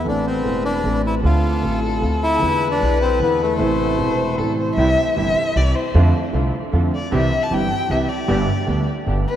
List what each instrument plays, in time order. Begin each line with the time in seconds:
0.04 grand piano A1 A2 E3 A3 C4, upright bass A1, violin B4
0.08 bandoneon D4, grand piano A4
0.27 bandoneon C4
0.43 grand piano E1 E2 E3 A3 C4, upright bass E1
0.47 grand piano A4
0.65 bandoneon D4
0.83 upright bass A1, grand piano A1 A2 E3 A3 C4 A4
1.06 bandoneon E4
1.23 upright bass D2, grand piano D2 D3 A3 C4 F4, bandoneon F4, violin A4
1.62 grand piano A1 A2 D3 A3 C4 F4, upright bass A1
2.01 grand piano D2 D3 A3 C4 F4, upright bass D2
2.23 bandoneon E4
2.39 grand piano E2 D3 E3 G#3 B3, upright bass E2, violin B4
2.44 grand piano E4
2.71 bandoneon D4
2.79 grand piano B1 B2 D3 G#3 B3 E4, upright bass B1
3.02 bandoneon C4
3.19 upright bass E2, grand piano E2 D3 E3 G#3 B3 E4, bandoneon B3
3.42 bandoneon A3
3.57 grand piano A1 A2 C3 E3 A3, upright bass A1, violin C5
3.61 grand piano E4
3.97 upright bass E1, grand piano E1 E2 C3 E3 A3
4.01 grand piano E4
4.36 upright bass A1, grand piano A1 A2 C3 E3 A3, violin A4
4.41 grand piano E4
4.58 violin C5
4.76 upright bass C2, grand piano C2 C3 E3 G3 E4, string section C4 E4 G4, violin E5
5.16 grand piano G1 G2 C3 E3 G3 E4, upright bass G1, string section C4 E4 G4, violin E5
5.55 upright bass C2, grand piano C2 C3 E3 G3 E4, string section C4 E4 G4, violin D5
5.76 violin C5
5.94 upright bass F2, grand piano F2 D3 F3 A3 C4 F4, string section D4 F4 A4
6.33 upright bass C2, grand piano C2 C3 D3 A3 C4 F4, string section D4 F4 A4
6.73 upright bass F2, grand piano F2 D3 F3 A3 C4 F4, string section D4 F4 A4
6.95 violin D5
7.12 grand piano C2 C3 E3 G3 C4 G4, upright bass C2, string section C4 E4 G4, violin E5
7.43 violin A5
7.51 upright bass G1, grand piano G1 G2 E3 G3 C4 G4, string section C4 E4 G4, violin G5
7.90 upright bass C2, grand piano C2 C3 E3 G3 C4 G4, string section C4 E4 G4, violin E5
8.09 violin D5
8.28 grand piano G1 G2 D3 G3 B3 G4, upright bass G1, string section B3 D4 G4
8.67 grand piano D2 D3 G3 B3 G4, upright bass D2, string section B3 D4 G4
9.07 upright bass G1, grand piano G1 G2 D3 G3 B3 G4, string section B3 D4 G4
9.28 violin B4